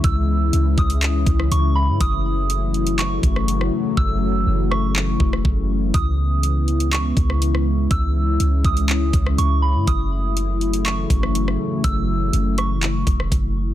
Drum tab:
HH |x---x-xxx-x-x---|x---x-xxx-x-x---|----------------|x---x-xxx-x-x---|
CP |--------x-------|--------x-------|--------x-------|--------x-------|
SD |-----------r----|-----------r-r--|------r----r----|-----------r-r--|
BD |o-----o---o-----|o---------o-----|o---------o-o---|o---------o-----|

HH |x---x-xxx-x-x---|x---x-xxx-x-x---|x---x-x-x-x-x---|
CP |--------x-------|--------x-------|--------x-------|
SD |-----------r----|-----------r-r--|------r----r----|
BD |o-----o---o-----|o---------o-----|o---------o-o---|